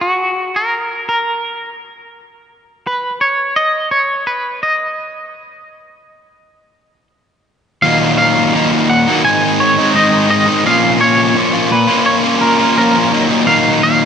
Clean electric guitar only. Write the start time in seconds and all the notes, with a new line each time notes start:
0.01 F#4
0.56 A#4
1.09 A#4
2.87 B4
3.21 C#5
3.56 D#5
3.91 C#5
4.27 B4
4.63 D#5
7.82 F5
8.18 F5
8.90 F#5
9.25 G#5
9.60 C#5
9.96 D#5
10.30 D#5
10.67 F5
11.01 C#5
11.72 B4
12.06 C#5
12.41 A#4
12.78 A#4
13.47 F5
13.83 F5